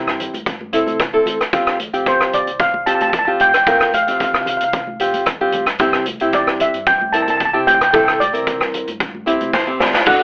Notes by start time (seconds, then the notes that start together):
Already playing: C4 E4 G4 A#4
0.07 G2, cross-stick
0.20 closed hi-hat, low conga
0.34 G2, closed hi-hat, high conga
0.46 kick, closed hi-hat
0.61 high conga
0.73 C4 E4 A4, closed hi-hat
0.87 C2, closed hi-hat, high conga
1.00 kick, cross-stick, closed hi-hat
1.13 E2 C4 E4 A4
1.26 closed hi-hat, high conga, low conga
1.41 cross-stick, closed hi-hat
1.53 F2 C4 F4 G4, kick, closed hi-hat
1.67 cross-stick
1.80 closed hi-hat, high conga
1.93 F2 C4 F4 G4, closed hi-hat
2.06 C5, kick, closed hi-hat
2.20 C2, cross-stick
2.33 D5, closed hi-hat, low conga
2.47 C2, closed hi-hat
2.59 F5, kick, closed hi-hat
2.74 high conga
2.86 C4 F4 G4 A5, closed hi-hat
2.95 A5
3.00 F2 A5, closed hi-hat, high conga
3.10 A5, kick, closed hi-hat
3.19 A5
3.25 F3 C4 F4 G4 A5
3.40 G5, closed hi-hat, high conga, low conga
3.49 G5
3.54 G5, cross-stick, closed hi-hat
3.63 F2 G5, kick, closed hi-hat
3.67 C4 F4 A#4 G5
3.78 G5, cross-stick
3.93 F5, closed hi-hat, high conga
4.03 F5
4.07 F2 C4 F4 G4, closed hi-hat
4.11 F5
4.18 F5, kick, closed hi-hat
4.24 F5
4.34 C2 F5, cross-stick
4.42 F5
4.46 F5, closed hi-hat, low conga
4.57 F5, closed hi-hat
4.61 C2 F5
4.73 kick, closed hi-hat
4.87 high conga
5.00 C4 F4 G4, closed hi-hat
5.14 F2, closed hi-hat, high conga
5.26 kick, cross-stick, closed hi-hat
5.41 G2 C4 F4 G4
5.52 closed hi-hat, high conga, low conga
5.66 cross-stick, closed hi-hat
5.79 C2 C4 E4 G4, kick, closed hi-hat
5.93 cross-stick
6.06 closed hi-hat, high conga
6.20 C2 C4 E4 G4, closed hi-hat
6.32 D5, kick, closed hi-hat
6.47 G2, cross-stick
6.60 E5, closed hi-hat, low conga
6.74 G2, closed hi-hat
6.86 G5, kick, closed hi-hat
7.01 high conga
7.13 C4 E4 A#4 A5, closed hi-hat
7.22 A5
7.27 C2 A5, closed hi-hat, high conga
7.37 A5, kick, closed hi-hat
7.45 A5
7.53 C3 C4 E4 G4 A5
7.67 G5, closed hi-hat, high conga
7.75 G5
7.81 G5, cross-stick, closed hi-hat
7.91 C2 C4 E4 A4 G5, kick, closed hi-hat, low conga
7.98 G5
8.05 G5, cross-stick
8.20 D5, closed hi-hat, high conga
8.33 C2 C4 E4 A#4, closed hi-hat
8.47 kick, closed hi-hat
8.60 G2, cross-stick
8.74 closed hi-hat, low conga
8.87 G2, closed hi-hat, high conga
9.00 kick, closed hi-hat
9.15 high conga
9.26 C4 E4 G4, closed hi-hat
9.41 C2, closed hi-hat, high conga
9.53 A1 C5, kick, snare
9.67 C4 E4 G4
9.80 G1 D5, snare, high conga, low conga
9.94 snare
10.06 G1 A3 D4 F#4 F#5, kick, crash